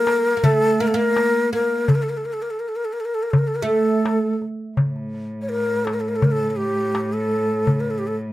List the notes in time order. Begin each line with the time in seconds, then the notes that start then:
Already playing: A#3 A#4
0.07 darbuka tek
0.37 A#3
0.43 A3 A4, darbuka dum
0.80 A#3 A#4, darbuka ka
0.87 A4
0.94 A#3 A#4
1.16 darbuka tek
1.53 A#3 A#4, darbuka ka
1.88 A4, darbuka dum
1.95 A#4
2.03 A4
2.09 A#4
2.17 A4
2.25 A#4, darbuka ka
2.33 A4
2.42 A#4
2.50 A4
2.60 A#4
2.68 A4
2.76 A#4
2.85 A4
2.93 A#4
3.00 A4
3.05 A#4
3.15 A4
3.23 A#4
3.31 A4, darbuka dum
3.39 A#4
3.48 A4
3.55 A#4
3.62 A3 A4
3.70 darbuka ka
4.05 darbuka tek
4.42 darbuka ka
4.77 A2, darbuka dum
4.96 darbuka ka
5.14 darbuka ka
5.42 C#5
5.49 A#4
5.85 A4, darbuka tek
5.94 A#4
6.00 A4
6.09 A#4
6.16 A4
6.22 A#4, darbuka dum
6.32 A4
6.50 A4
6.56 G4, darbuka ka
6.95 darbuka tek
7.13 A4
7.32 darbuka ka
7.67 darbuka dum
7.80 A#4
7.86 darbuka ka
7.90 A4
7.99 G4
8.04 A4, darbuka ka